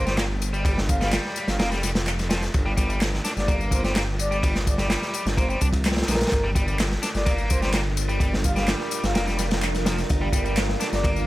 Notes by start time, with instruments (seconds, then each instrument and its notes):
Already playing: detuned saw bass G1
0.06 overdriven electric guitar G3, soft synth lead C5, snare, tambourine
0.18 overdriven electric guitar A#3, snare, clap, ride, tambourine
0.42 ride, tambourine
0.53 overdriven electric guitar G3, tambourine
0.65 overdriven electric guitar G3, kick, ride, tambourine
0.78 snare
0.88 soft synth lead F5, kick, ride, tambourine
1.00 overdriven electric guitar G3, soft synth lead F5, snare, tambourine
1.12 snare, clap, ride, tambourine
1.25 snare
1.36 ride, tambourine
1.48 detuned saw bass G1, soft synth lead F5, snare, tambourine
1.59 detuned saw bass F1, overdriven electric guitar A#3, soft synth lead F5, snare, ride, tambourine
1.71 overdriven electric guitar G3, snare, tambourine
1.83 overdriven electric guitar G3, snare, ride, tambourine
1.95 snare, ride, tambourine
2.06 snare, clap, tambourine
2.19 snare, ride, tambourine
2.30 overdriven electric guitar F3, snare, ride, tambourine
2.43 snare, tambourine
2.54 detuned saw bass G1, kick, ride, tambourine
2.66 overdriven electric guitar G3
2.77 overdriven electric guitar G3, kick, ride, tambourine
2.90 overdriven electric guitar G3, ride, tambourine
3.01 snare, clap, ride, tambourine
3.14 snare
3.24 overdriven electric guitar D4, snare, ride, tambourine
3.37 detuned saw bass G1, soft synth lead D5, snare, tambourine
3.48 overdriven electric guitar A#3, kick, ride, tambourine
3.61 tambourine
3.71 soft synth lead C5, kick, ride, tambourine
3.84 overdriven electric guitar G3, soft synth lead C5, snare, tambourine
3.96 overdriven electric guitar A#3, snare, clap, ride, tambourine
4.19 soft synth lead D5, ride, tambourine
4.31 overdriven electric guitar G3, tambourine
4.43 overdriven electric guitar G3, kick, ride, tambourine
4.55 snare, tambourine
4.67 soft synth lead D5, kick, ride, tambourine
4.78 overdriven electric guitar G3, soft synth lead D5, snare, tambourine
4.90 snare, clap, ride, tambourine
5.02 snare, tambourine
5.13 ride, tambourine
5.26 detuned saw bass G1, snare, tambourine
5.37 overdriven electric guitar A#3, soft synth lead C5, kick, ride, tambourine
5.49 overdriven electric guitar G3, soft synth lead C5, tambourine
5.61 detuned saw bass C2, overdriven electric guitar D4, kick, ride, tambourine
5.73 kick, ride, tambourine
5.85 snare, clap, ride, tambourine
5.91 snare, ride
5.96 snare, ride, tambourine
6.02 snare, ride
6.08 detuned saw bass A#1, overdriven electric guitar F3, soft synth lead A#4, snare, ride, tambourine
6.15 snare, ride
6.21 snare, ride, tambourine
6.27 snare, ride
6.32 detuned saw bass G1, ambient pad G3 D4 F4 A#4, kick, ride, tambourine
6.44 overdriven electric guitar G3
6.55 overdriven electric guitar G3, kick, ride, tambourine
6.67 overdriven electric guitar G3, ride, tambourine
6.79 snare, clap, ride, tambourine
6.92 snare
7.03 overdriven electric guitar D4, snare, ride, tambourine
7.15 detuned saw bass G1, soft synth lead D5, snare, tambourine
7.26 overdriven electric guitar A#3, kick, ride, tambourine
7.38 tambourine
7.50 soft synth lead C5, kick, ride, tambourine
7.62 overdriven electric guitar G3, soft synth lead C5, snare, tambourine
7.73 overdriven electric guitar A#3, snare, clap, ride, tambourine
7.97 ride, tambourine
8.09 overdriven electric guitar G3, tambourine
8.20 overdriven electric guitar G3, kick, ride, tambourine
8.34 snare
8.44 soft synth lead F5, kick, ride, tambourine
8.56 overdriven electric guitar G3, soft synth lead F5, snare, tambourine
8.68 snare, clap, ride, tambourine
8.80 snare
8.91 ride, tambourine
9.03 detuned saw bass G1, soft synth lead F5, snare, tambourine
9.15 detuned saw bass F1, overdriven electric guitar A#3, soft synth lead F5, snare, ride, tambourine
9.27 overdriven electric guitar G3, snare, tambourine
9.38 overdriven electric guitar G3, snare, ride, tambourine
9.51 snare, ride, tambourine
9.62 snare, clap, tambourine
9.75 snare, ride, tambourine
9.86 overdriven electric guitar F3, snare, ride, tambourine
9.98 snare, tambourine
10.10 detuned saw bass G1, kick, ride, tambourine
10.21 overdriven electric guitar G3
10.33 overdriven electric guitar G3, kick, ride, tambourine
10.45 overdriven electric guitar G3, ride, tambourine
10.57 snare, clap, ride, tambourine
10.69 snare
10.80 overdriven electric guitar D4, snare, ride, tambourine
10.93 detuned saw bass G1, soft synth lead D5, snare, tambourine
11.04 overdriven electric guitar A#3, kick, ride, tambourine
11.16 tambourine